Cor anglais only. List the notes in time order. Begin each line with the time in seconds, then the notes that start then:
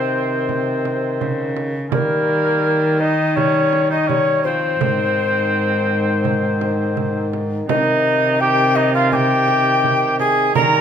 Already playing: C4
1.90 A#3
3.00 D#4
3.36 C#4
3.90 D#4
4.07 C#4
4.46 C4
7.69 D#4
8.41 G4
8.77 D#4
8.95 F4
9.13 G4
10.20 G#4
10.55 A#4